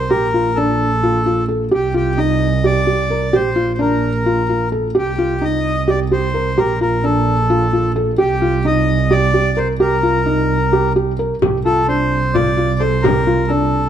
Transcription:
Already playing: double bass C2, accordion C5
0.10 double bass A#1, felt piano G4, accordion A#4
0.34 felt piano F4
0.56 felt piano D4, accordion A4
1.03 felt piano F4
1.26 felt piano F4
1.48 felt piano A4
1.71 double bass C2, felt piano G4, accordion G4
1.94 felt piano F4, accordion G4
2.18 felt piano D#4, accordion D#5
2.64 felt piano G4, accordion D5
2.87 felt piano G4
3.10 felt piano A#4
3.33 double bass A#1, felt piano G4, accordion C5
3.56 felt piano F4
3.74 accordion C5
3.79 felt piano D4, accordion A#4
4.26 felt piano F4
4.49 felt piano F4
4.72 felt piano A4
4.95 double bass C2, felt piano G4, accordion G4
5.18 felt piano F4
5.41 felt piano D#4, accordion D#5
5.88 felt piano G4, accordion D5
6.11 felt piano G4, accordion C5
6.34 felt piano A#4
6.57 double bass A#1, felt piano G4, accordion A#4
6.81 felt piano F4, accordion A#4
7.04 felt piano D4, accordion A4
7.50 felt piano F4
7.73 felt piano F4
7.96 felt piano A4
8.18 double bass C2, felt piano G4, accordion G4
8.42 felt piano F4
8.65 felt piano D#4, accordion D#5
9.11 felt piano G4, accordion D5
9.34 felt piano G4
9.57 felt piano A#4, accordion C5
9.80 double bass C2, felt piano G4, accordion A#4
10.03 felt piano F4
10.26 felt piano D#4
10.73 felt piano G4
10.96 felt piano G4
11.19 felt piano A#4
11.42 double bass C2, felt piano G4, frame drum
11.65 felt piano F4, accordion A4
11.88 felt piano D4, accordion C5
12.34 felt piano F4, accordion D5, frame drum
12.57 felt piano F4
12.80 felt piano A4, accordion C5
13.02 felt piano G4, accordion A#4, frame drum
13.27 felt piano F4
13.48 felt piano D4, accordion A4

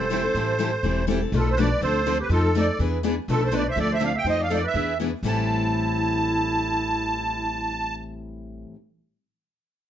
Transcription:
Already playing: upright bass E1, clarinet A4, accordion C5
0.12 steel-string acoustic guitar E3 G3 C4 E4 A4
0.24 steel-string acoustic guitar C4 E4 A4
0.35 upright bass A1, steel-string acoustic guitar E3 G3 C4 E4 A4
0.60 steel-string acoustic guitar E3 G3 C4 E4 A4
0.83 upright bass E1, steel-string acoustic guitar E3 G3 C4 E4 A4
1.10 steel-string acoustic guitar E3 G3 C4 E4 A4
1.21 steel-string acoustic guitar C4 E4 A4
1.32 upright bass B1, steel-string acoustic guitar B2 F3 A3 D4 A4 B4, clarinet F4
1.39 accordion A4
1.49 clarinet A4, accordion C5
1.56 steel-string acoustic guitar B2 F3 A3 D4 A4 B4, clarinet B4, accordion D5
1.81 upright bass D2, steel-string acoustic guitar D3 F3 C4 D4 A4, clarinet A4, accordion C5
2.06 steel-string acoustic guitar D3 F3 C4 D4 A4
2.20 clarinet G4, accordion B4
2.29 upright bass F2, steel-string acoustic guitar F3 A3 C4 D#4 A4, clarinet F4, accordion A4
2.55 steel-string acoustic guitar F3 A3 C4 D#4 A4, clarinet A4, accordion D5
2.79 upright bass E2, steel-string acoustic guitar E3 B3 D4 G#4 B4
3.03 steel-string acoustic guitar E3 B3 D4 G#4 B4
3.28 upright bass B1, steel-string acoustic guitar B2 F3 A3 D4 A4 B4, clarinet F4, accordion A4
3.42 clarinet A4, accordion C5
3.52 steel-string acoustic guitar B2 F3 A3 D4 A4 B4, clarinet B4
3.56 accordion D5
3.68 clarinet C5, accordion E5
3.76 upright bass D2, steel-string acoustic guitar D3 F3 C4 D4 A4, clarinet A4
3.80 accordion D5
3.92 clarinet C5, accordion E5
4.00 steel-string acoustic guitar D3 F3 C4 D4 A4, clarinet D5
4.04 accordion F5
4.15 clarinet E5, accordion G5
4.24 upright bass F2, steel-string acoustic guitar F3 A3 C4 D#4 A4, clarinet C5
4.30 accordion D#5
4.39 clarinet D5, accordion F5
4.50 steel-string acoustic guitar F3 A3 C4 D#4 A4, clarinet A4
4.54 accordion D5
4.63 clarinet B4, accordion E5
4.74 upright bass E2, steel-string acoustic guitar E3 B3 D4 G#4 B4
5.00 steel-string acoustic guitar E3 B3 D4 G#4 B4
5.23 upright bass A1, steel-string acoustic guitar A2 E3 G3 C4, clarinet E4
5.27 steel-string acoustic guitar E4 A4, accordion A5

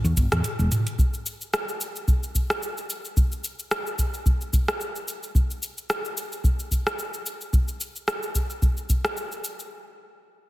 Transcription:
0.04 fretless electric bass E2, cabasa
0.17 fretless electric bass G1, kick, closed hi-hat, cabasa
0.32 fretless electric bass E2, cross-stick, closed hi-hat, mid tom, cabasa
0.44 closed hi-hat, cabasa
0.59 fretless electric bass E1, cabasa
0.72 closed hi-hat, mid tom, cabasa
0.87 closed hi-hat, cabasa
0.99 kick, cabasa
1.14 cabasa
1.26 cabasa
1.41 cabasa
1.54 cross-stick, cabasa
1.69 cabasa
1.81 cabasa
1.96 cabasa
2.08 kick, cabasa
2.23 cabasa
2.35 kick, cabasa
2.50 cross-stick, cabasa
2.63 cabasa
2.77 cabasa
2.90 cabasa
3.05 cabasa
3.17 kick, cabasa
3.32 cabasa
3.44 cabasa
3.59 cabasa
3.71 cross-stick, cabasa
3.86 cabasa
3.99 kick, cabasa
4.14 cabasa
4.26 kick, cabasa
4.41 cabasa
4.53 kick, cabasa
4.68 cross-stick, cabasa
4.81 cabasa
4.96 cabasa
5.08 cabasa
5.23 cabasa
5.35 kick, cabasa
5.50 cabasa
5.63 cabasa
5.78 cabasa
5.90 cross-stick, cabasa
6.05 cabasa
6.17 cabasa
6.32 cabasa
6.44 kick, cabasa
6.59 cabasa
6.71 kick, cabasa
6.87 cross-stick, cabasa
6.99 cabasa
7.14 cabasa
7.26 cabasa
7.41 cabasa
7.53 kick, cabasa
7.68 cabasa
7.81 cabasa
7.96 cabasa
8.08 cross-stick, cabasa
8.23 cabasa
8.35 kick, cabasa
8.50 cabasa
8.62 kick, cabasa
8.77 cabasa
8.90 kick, cabasa
9.05 cross-stick, cabasa
9.17 cabasa
9.32 cabasa
9.44 cabasa
9.59 cabasa

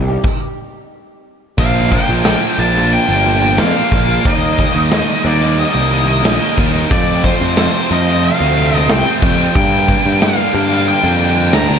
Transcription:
Already playing: picked electric bass C2
0.07 clean electric guitar G3 D#4 G4
0.24 kick, crash
1.58 picked electric bass A#1, distorted electric guitar A#2 D3 F3 A#3 D4, lead electric guitar F5, kick, crash
1.91 distorted electric guitar A#2 D3 F3 A#3 D4, lead electric guitar G5, kick, open hi-hat
2.07 picked electric bass A#1, distorted electric guitar F3 A#3 D4
2.25 distorted electric guitar A#2 D3 F3 A#3 D4, snare, open hi-hat
2.58 picked electric bass A#1, distorted electric guitar A#2 D3 F3 A#3 D4, lead electric guitar A5, open hi-hat
2.75 distorted electric guitar F3 A#3 D4, snare
2.92 lead electric guitar G5, open hi-hat
3.08 picked electric bass G1, distorted electric guitar F3 A#3 D4
3.24 distorted electric guitar A#2 D3 F3 A#3 D4, open hi-hat
3.41 distorted electric guitar F3 A#3 D4
3.57 picked electric bass F2, distorted electric guitar A#2 D3 F3 A#3 D4, lead electric guitar F5, snare, open hi-hat
3.75 distorted electric guitar F3 A#3 D4
3.92 picked electric bass A#1, distorted electric guitar A#2 F3 A#3 D4, kick, open hi-hat
4.08 distorted electric guitar F3 A#3 D4
4.25 picked electric bass D#2, distorted electric guitar D#3 G3 A#3 D#4, lead electric guitar D#5, kick, open hi-hat
4.58 distorted electric guitar D#3 G3 A#3 D#4, kick, open hi-hat
4.75 picked electric bass D#2, distorted electric guitar G3 A#3 D#4
4.91 distorted electric guitar D#3 G3 A#3 D#4, snare, open hi-hat
5.24 picked electric bass D#2, distorted electric guitar D#3 G3 A#3 D#4, lead electric guitar D5, open hi-hat
5.41 distorted electric guitar G3 A#3 D#4, snare
5.58 lead electric guitar D#5, open hi-hat
5.74 picked electric bass C2, distorted electric guitar G3 A#3 D#4
5.91 distorted electric guitar D#3 G3 A#3 D#4, open hi-hat
6.07 distorted electric guitar G3 A#3 D#4
6.23 picked electric bass A#1, distorted electric guitar D#3 G3 A#3 D#4, snare, open hi-hat
6.40 distorted electric guitar G3 A#3 D#4
6.57 picked electric bass D#2, distorted electric guitar D#3 G3 A#3 D#4, kick, open hi-hat
6.73 distorted electric guitar G3 A#3 D#4
6.89 distorted electric guitar F2 C3 F3 A3 C4, picked electric bass F2, lead electric guitar D5, kick, open hi-hat
7.23 distorted electric guitar C3 F3 A3 C4, lead electric guitar C5, kick, open hi-hat
7.40 picked electric bass F2, distorted electric guitar F3 A3 C4
7.56 distorted electric guitar F2 C3 F3 A3 C4, snare, open hi-hat
7.90 picked electric bass F2, distorted electric guitar C3 F3 A3 C4, lead electric guitar D#5, open hi-hat
8.05 distorted electric guitar F3 A3 C4
8.24 lead electric guitar F5, open hi-hat
8.39 picked electric bass D2, distorted electric guitar F3 A3 C4
8.55 distorted electric guitar C3 F3 A3 C4, open hi-hat
8.71 distorted electric guitar F3 A3 C4, snare
8.75 lead electric guitar D#5
8.88 picked electric bass C2, distorted electric guitar F2 C3 F3 A3 C4, lead electric guitar G5, snare, open hi-hat
9.05 distorted electric guitar F3 A3 C4
9.22 picked electric bass F2, distorted electric guitar C3 F3 A3 C4, kick, open hi-hat
9.38 distorted electric guitar F3 A3 C4
9.54 distorted electric guitar G2 D3 G3 A#3 D4, picked electric bass G2, lead electric guitar G5, kick, open hi-hat
9.86 distorted electric guitar D3 G3 A#3 D4, kick, open hi-hat
10.03 picked electric bass G2, distorted electric guitar G3 A#3 D4
10.19 distorted electric guitar G2 D3 G3 A#3 D4, lead electric guitar F5, snare, open hi-hat
10.52 picked electric bass G2, distorted electric guitar D3 G3 A#3 D4, open hi-hat
10.69 distorted electric guitar G3 A#3 D4, snare
10.88 lead electric guitar G5, open hi-hat
11.03 picked electric bass F2, distorted electric guitar G3 A#3 D4
11.18 distorted electric guitar D3 G3 A#3 D4, open hi-hat
11.35 distorted electric guitar G3 A#3 D4
11.51 picked electric bass D2, distorted electric guitar G2 D3 G3 A#3 D4, lead electric guitar A#5, snare, open hi-hat
11.68 picked electric bass D2, distorted electric guitar G3 A#3 D4

